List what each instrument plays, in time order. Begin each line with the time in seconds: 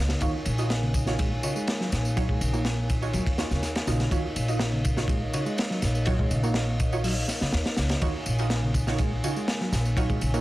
Already playing: upright bass C#2, reed electric piano C#3, analog synth pad D#4 A#4 C#5 D#5 F5
0.09 snare, ride, tambourine
0.20 upright bass D#2, reed electric piano D#3, synth stab D#4 F4 F#4 C#5, analog synth pad G#5, kick, ride, tambourine
0.45 upright bass A#1, ride, tambourine
0.58 synth stab D#4 F4 F#4 D#5, ride, tambourine
0.70 snare, ride, tambourine
0.82 reed electric piano C#3
0.94 kick, ride, tambourine
1.06 synth stab D#4 F4 F#4 C#5, snare, tambourine
1.19 reed electric piano G#3, kick, ride, tambourine
1.43 reed electric piano C#3, synth stab D#4 F4 F#4 C#5, ride, tambourine
1.56 reed electric piano G#3, tambourine
1.67 snare, ride, tambourine
1.80 reed electric piano F#3, snare
1.92 upright bass A#1, snare, ride, tambourine
2.05 tambourine
2.16 reed electric piano F#3, synth stab D#4 F4 F#4 C#5, kick, ride, tambourine
2.29 reed electric piano G#3, kick
2.41 upright bass A#1, reed electric piano C#3, ride, tambourine
2.53 reed electric piano A#3, synth stab D#4 F4 F#4 C#5, tambourine
2.65 snare, ride, tambourine
2.90 kick, ride, tambourine
3.02 synth stab D#4 F4 F#4 C#5, tambourine
3.13 upright bass D#2, reed electric piano F#3, ride, tambourine
3.27 kick, ride
3.38 synth stab D#4 F4 F#4 C#5, snare, ride, tambourine
3.51 upright bass D#2, reed electric piano C#3, snare, tambourine
3.62 snare, ride, tambourine
3.75 snare, ride, tambourine
3.87 upright bass A#1, reed electric piano C#3, synth stab D#4 F4 F#4 D#5, snare, tambourine
4.00 snare, ride, tambourine
4.11 upright bass D#2, reed electric piano D#3, synth stab D#4 F4 F#4 C#5, analog synth pad D#5, kick, ride, tambourine
4.36 upright bass A#1, ride, tambourine
4.48 synth stab D#4 F4 F#4 D#5, ride, tambourine
4.59 snare, ride, tambourine
4.73 reed electric piano C#3
4.84 kick, ride, tambourine
4.97 synth stab D#4 F4 F#4 C#5, snare, tambourine
5.08 reed electric piano G#3, kick, ride, tambourine
5.33 reed electric piano C#3, synth stab D#4 F4 F#4 C#5, ride, tambourine
5.46 reed electric piano G#3, tambourine
5.58 snare, ride, tambourine
5.70 reed electric piano F#3, snare
5.82 upright bass A#1, snare, ride, tambourine
5.95 tambourine
6.05 reed electric piano F#3, synth stab D#4 F4 F#4 C#5, kick, ride, tambourine
6.19 reed electric piano G#3, kick
6.31 upright bass A#1, reed electric piano C#3, ride, tambourine
6.43 reed electric piano A#3, synth stab D#4 F4 F#4 C#5, tambourine
6.54 snare, ride, tambourine
6.80 kick, ride, tambourine
6.92 synth stab D#4 F4 F#4 C#5, tambourine
7.04 reed electric piano F#3, open hi-hat, tambourine
7.28 snare, ride, tambourine
7.41 reed electric piano C#3, muted upright bass stroke, snare, tambourine
7.52 upright bass D#2, snare, ride, tambourine
7.66 snare, ride
7.77 upright bass C#2, reed electric piano C#3, snare, ride, tambourine
7.89 snare, ride, tambourine
8.01 upright bass D#2, reed electric piano D#3, synth stab D#4 F4 F#4 C#5, analog synth pad G#5, kick, ride, tambourine
8.26 upright bass A#1, ride, tambourine
8.39 synth stab D#4 F4 F#4 D#5, ride, tambourine
8.50 snare, ride, tambourine
8.63 reed electric piano C#3
8.74 kick, ride, tambourine
8.87 synth stab D#4 F4 F#4 C#5, snare, tambourine
8.98 reed electric piano G#3, kick, ride, tambourine
9.24 reed electric piano C#3, synth stab D#4 F4 F#4 C#5, ride, tambourine
9.36 reed electric piano G#3, tambourine
9.48 snare, ride, tambourine
9.61 reed electric piano F#3, snare
9.72 upright bass A#1, snare, ride, tambourine
9.85 tambourine
9.97 reed electric piano F#3, synth stab D#4 F4 F#4 C#5, kick, ride, tambourine
10.09 reed electric piano G#3, kick, tambourine
10.21 upright bass A#1, reed electric piano C#3, ride, tambourine
10.34 reed electric piano A#3, synth stab D#4 F4 F#4 C#5, tambourine